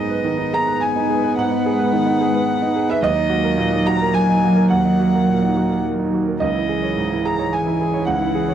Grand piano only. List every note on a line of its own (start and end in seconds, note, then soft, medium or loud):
0.00 1.32 G#2 medium
0.00 0.38 D#4 soft
0.00 0.18 G#4 soft
0.00 0.49 D#5 medium
0.09 0.33 B4 soft
0.24 0.47 D#3 soft
0.38 0.61 D#4 soft
0.53 0.76 G#4 soft
0.53 0.80 A#5 medium
0.67 1.12 B4 soft
0.80 1.33 G#5 medium
0.96 1.18 D#4 soft
1.10 1.32 G#4 soft
1.24 1.46 B4 soft
1.37 2.99 G#2 medium
1.37 2.86 F#5 medium
1.51 1.73 D#4 soft
1.66 1.88 G#4 medium
1.79 2.01 B4 soft
1.93 2.15 D#3 soft
2.06 2.28 D#4 soft
2.21 2.43 G#4 medium
2.34 2.78 B4 medium
2.62 2.84 D#4 medium
2.76 2.97 G#4 medium
2.89 3.03 B4 medium
2.89 3.03 E5 medium
3.02 4.66 D#2 medium
3.02 3.83 D#5 loud
3.15 3.38 D#4 medium
3.30 3.52 F#4 medium
3.43 3.66 A#4 medium
3.58 3.80 A#2 medium
3.72 3.94 D#4 medium
3.86 4.09 F#4 medium
3.86 4.12 A#5 loud
4.01 4.45 A#4 medium
4.14 4.66 G#5 medium
4.29 4.51 D#4 soft
4.44 4.65 F#4 soft
4.56 4.78 A#4 soft
4.70 6.37 D#2 medium
4.70 5.80 F#5 medium
4.85 5.07 D#4 soft
5.00 5.21 F#4 soft
5.14 5.36 A#4 soft
5.29 5.50 A#2 soft
5.42 5.64 D#4 soft
5.57 5.79 F#4 soft
5.71 6.16 A#4 soft
5.99 6.21 D#4 soft
6.14 6.36 F#4 soft
6.27 6.41 A#4 soft
6.40 8.04 C#2 medium
6.40 7.21 D#5 medium
6.55 6.78 E4 soft
6.69 6.92 G#4 soft
6.83 7.06 C#5 soft
6.97 7.20 G#2 soft
7.13 7.34 E4 soft
7.25 7.48 G#4 soft
7.25 7.51 A#5 medium
7.39 7.83 C#5 soft
7.53 8.04 G#5 medium
7.67 7.89 E4 soft
7.81 8.03 G#4 soft
7.94 8.16 C#5 soft
8.06 8.54 C#2 medium
8.06 8.54 F#5 medium
8.21 8.43 E4 soft
8.35 8.54 G#4 soft
8.49 8.54 C#5 soft